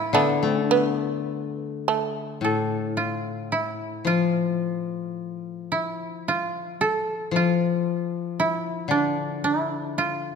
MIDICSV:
0, 0, Header, 1, 4, 480
1, 0, Start_track
1, 0, Tempo, 1136364
1, 1027, Time_signature, 4, 2, 24, 8
1, 1027, Tempo, 1092896
1, 2947, Tempo, 1054482
1, 4563, End_track
2, 0, Start_track
2, 0, Title_t, "Koto"
2, 0, Program_c, 0, 107
2, 0, Note_on_c, 0, 64, 66
2, 62, Note_on_c, 0, 59, 62
2, 176, Note_off_c, 0, 59, 0
2, 176, Note_on_c, 0, 60, 62
2, 231, Note_off_c, 0, 60, 0
2, 231, Note_on_c, 0, 61, 62
2, 286, Note_off_c, 0, 61, 0
2, 286, Note_on_c, 0, 62, 62
2, 905, Note_off_c, 0, 64, 0
2, 1033, Note_on_c, 0, 69, 49
2, 1089, Note_off_c, 0, 62, 0
2, 1263, Note_on_c, 0, 65, 46
2, 1505, Note_on_c, 0, 64, 46
2, 1532, Note_off_c, 0, 65, 0
2, 1746, Note_on_c, 0, 65, 49
2, 1772, Note_off_c, 0, 64, 0
2, 1869, Note_off_c, 0, 69, 0
2, 2470, Note_on_c, 0, 64, 49
2, 2496, Note_off_c, 0, 65, 0
2, 2718, Note_on_c, 0, 65, 53
2, 2745, Note_off_c, 0, 64, 0
2, 2950, Note_on_c, 0, 69, 56
2, 3198, Note_off_c, 0, 65, 0
2, 3200, Note_on_c, 0, 65, 52
2, 3672, Note_on_c, 0, 64, 54
2, 3699, Note_off_c, 0, 65, 0
2, 3816, Note_off_c, 0, 69, 0
2, 3905, Note_on_c, 0, 62, 52
2, 4146, Note_off_c, 0, 64, 0
2, 4148, Note_on_c, 0, 64, 54
2, 4393, Note_on_c, 0, 65, 55
2, 4421, Note_off_c, 0, 64, 0
2, 4563, Note_off_c, 0, 62, 0
2, 4563, Note_off_c, 0, 65, 0
2, 4563, End_track
3, 0, Start_track
3, 0, Title_t, "Shamisen"
3, 0, Program_c, 1, 106
3, 0, Note_on_c, 1, 59, 73
3, 60, Note_off_c, 1, 59, 0
3, 61, Note_on_c, 1, 57, 64
3, 298, Note_off_c, 1, 57, 0
3, 300, Note_on_c, 1, 59, 63
3, 790, Note_off_c, 1, 59, 0
3, 794, Note_on_c, 1, 57, 59
3, 1029, Note_off_c, 1, 57, 0
3, 4563, End_track
4, 0, Start_track
4, 0, Title_t, "Koto"
4, 0, Program_c, 2, 107
4, 0, Note_on_c, 2, 45, 51
4, 55, Note_on_c, 2, 50, 51
4, 63, Note_off_c, 2, 45, 0
4, 180, Note_on_c, 2, 57, 38
4, 1018, Note_on_c, 2, 45, 36
4, 1147, Note_off_c, 2, 57, 0
4, 1500, Note_off_c, 2, 50, 0
4, 1736, Note_on_c, 2, 53, 34
4, 2459, Note_off_c, 2, 45, 0
4, 3174, Note_off_c, 2, 53, 0
4, 3180, Note_on_c, 2, 53, 37
4, 3892, Note_on_c, 2, 50, 35
4, 4563, Note_off_c, 2, 50, 0
4, 4563, Note_off_c, 2, 53, 0
4, 4563, End_track
0, 0, End_of_file